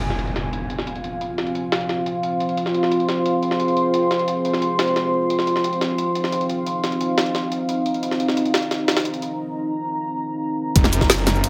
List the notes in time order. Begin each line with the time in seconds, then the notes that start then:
Already playing: C4 F4 F5, impact
0.02 closed hi-hat
0.10 C5, snare
0.19 closed hi-hat
0.27 closed hi-hat
0.36 snare, closed hi-hat
0.53 C6, closed hi-hat
0.70 closed hi-hat
0.79 snare
0.87 closed hi-hat
0.96 closed hi-hat
1.04 closed hi-hat
1.13 shaker
1.21 closed hi-hat
1.38 snare, closed hi-hat
1.47 closed hi-hat
1.55 closed hi-hat
1.72 snare, closed hi-hat
1.81 closed hi-hat
1.89 snare, closed hi-hat
2.06 closed hi-hat
2.23 closed hi-hat
2.40 closed hi-hat, shaker
2.49 closed hi-hat
2.57 G#4, closed hi-hat
2.66 snare
2.74 closed hi-hat
2.83 snare
2.92 closed hi-hat
3.00 closed hi-hat
3.09 snare, closed hi-hat
3.26 closed hi-hat
3.43 closed hi-hat, shaker
3.51 snare
3.60 closed hi-hat
3.68 closed hi-hat
3.77 closed hi-hat, shaker
3.85 shaker
3.94 closed hi-hat
4.11 snare, closed hi-hat
4.19 closed hi-hat
4.28 closed hi-hat
4.45 closed hi-hat, shaker
4.53 snare
4.62 closed hi-hat
4.79 snare, closed hi-hat
4.88 closed hi-hat
4.96 snare, closed hi-hat
5.13 shaker
5.22 shaker
5.30 D#4 F5, closed hi-hat
5.39 snare
5.47 closed hi-hat, shaker
5.56 snare
5.64 closed hi-hat
5.73 closed hi-hat
5.81 snare, closed hi-hat
5.98 closed hi-hat
6.15 closed hi-hat, shaker
6.24 snare
6.32 closed hi-hat
6.41 closed hi-hat
6.49 closed hi-hat, shaker
6.58 shaker
6.67 closed hi-hat
6.84 snare, closed hi-hat, shaker
6.92 closed hi-hat
7.01 closed hi-hat
7.18 snare, closed hi-hat
7.26 closed hi-hat
7.35 snare, closed hi-hat
7.52 closed hi-hat, shaker
7.69 closed hi-hat
7.86 closed hi-hat, shaker
7.94 closed hi-hat, shaker
8.03 A#5, closed hi-hat
8.11 snare
8.20 closed hi-hat, shaker
8.28 snare
8.37 closed hi-hat
8.46 closed hi-hat
8.54 snare, closed hi-hat
8.63 closed hi-hat
8.71 snare, closed hi-hat
8.88 snare, closed hi-hat
8.97 snare, closed hi-hat
9.05 closed hi-hat
9.14 closed hi-hat
9.22 closed hi-hat, shaker
9.31 shaker
10.76 F1 C4 F4 F5, kick, closed hi-hat
10.84 snare
10.93 F#1, closed hi-hat, shaker
11.01 kick, snare
11.10 snare, closed hi-hat
11.18 closed hi-hat
11.27 snare, closed hi-hat, shaker
11.35 shaker
11.44 closed hi-hat